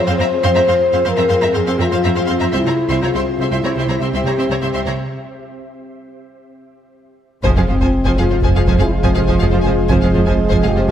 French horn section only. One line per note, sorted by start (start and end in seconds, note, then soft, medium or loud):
0.06 1.05 C5 medium
1.05 1.55 A#4 medium
1.55 1.79 G#4 medium
1.79 2.53 F4 medium
2.54 3.02 E4 medium
3.01 3.51 F4 medium
3.51 4.00 E4 medium
4.02 4.99 G4 medium
7.43 7.67 G#3 medium
7.67 8.17 C4 medium
8.17 8.79 F4 medium
8.80 8.93 E4 medium
8.92 9.91 F4 medium
9.90 10.64 G#4 medium
10.66 10.90 G4 medium